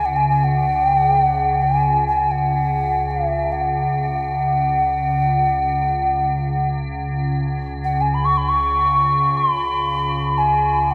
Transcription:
0.00 3.87 C#2 medium
0.00 3.86 C#3 medium
0.05 0.18 F#5 medium
0.16 0.28 G#5 medium
0.29 0.46 G#5 medium
0.44 0.86 F#5 medium
0.86 0.97 G5 medium
0.97 1.09 F#5 medium
1.09 1.21 G5 medium
1.21 1.63 F#5 medium
1.62 2.06 G#5 medium
2.08 2.33 G#5 medium
2.31 3.12 F#5 medium
3.11 3.54 E5 medium
3.52 6.69 F#5 medium
3.88 10.94 C#2 medium
3.88 10.94 C#3 medium
7.84 8.02 F#5 medium
8.01 8.16 G#5 medium
8.14 8.26 B5 medium
8.25 8.39 C#6 medium
8.37 8.50 B5 medium
8.49 9.38 C#6 medium
9.37 10.39 B5 medium
10.38 10.92 G#5 medium
10.91 10.94 F#5 soft

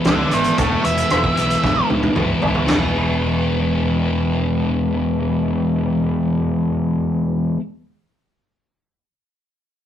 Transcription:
0.04 0.22 C#2 medium
0.04 0.57 E3 medium
0.04 0.35 G#3 medium
0.04 0.34 B3 medium
0.04 0.32 D5 medium
0.04 0.32 F#5 medium
0.04 snare medium
0.04 closed hi-hat soft
0.09 0.32 E4 medium
0.31 0.49 G#1 medium
0.31 0.60 B3 medium
0.31 0.60 E4 medium
0.31 0.57 G#4 medium
0.31 0.58 E5 medium
0.31 closed hi-hat medium
0.35 0.58 G#3 medium
0.44 closed hi-hat medium
0.58 0.75 E1 medium
0.58 1.08 E3 medium
0.58 0.86 G#3 medium
0.58 0.85 B3 medium
0.58 0.83 E4 medium
0.58 0.84 C#5 medium
0.58 kick loud
0.58 closed hi-hat medium
0.84 1.02 E1 medium
0.84 1.10 G#3 soft
0.84 1.10 B3 medium
0.84 1.11 E4 medium
0.84 1.87 E5 medium
0.84 closed hi-hat medium
0.97 closed hi-hat medium
1.09 1.28 E1 medium
1.09 1.63 E3 medium
1.09 1.38 G#3 medium
1.09 1.37 B3 medium
1.09 1.35 E4 medium
1.09 cross-stick loud
1.09 closed hi-hat medium
1.24 kick medium
1.36 1.54 B1 medium
1.36 2.15 G#3 medium
1.36 2.16 B3 medium
1.36 2.17 E4 medium
1.36 closed hi-hat medium
1.50 closed hi-hat medium
1.64 1.81 B1 medium
1.64 kick medium
1.64 snare soft
1.90 2.07 C#2 medium
1.90 high tom medium
2.03 high tom medium
2.15 2.33 C#2 medium
2.15 2.65 E3 medium
2.15 2.43 G#3 medium
2.15 2.41 B3 medium
2.15 2.40 E4 medium
2.15 mid tom medium
2.42 2.59 G#1 medium
2.42 2.67 G#3 soft
2.42 2.67 B3 medium
2.42 2.67 E4 medium
2.42 floor tom medium
2.55 floor tom medium
2.66 7.56 E1 medium
2.66 7.57 E3 medium
2.66 7.59 G#3 medium
2.66 7.60 B3 medium
2.66 7.61 E4 medium
2.66 snare medium
2.66 floor tom medium
2.66 crash medium

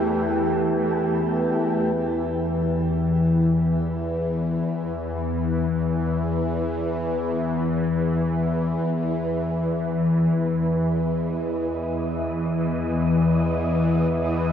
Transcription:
0.00 1.95 E2 medium
0.00 1.95 E3 medium
0.00 1.99 A3 medium
0.00 1.96 E4 medium
0.00 2.03 G4 medium
0.00 1.96 B4 medium
0.00 2.03 G5 medium
1.95 14.52 E2 medium
1.95 14.52 E3 medium
1.95 14.52 B3 medium
1.95 10.74 B4 medium
10.69 14.52 D#5 medium

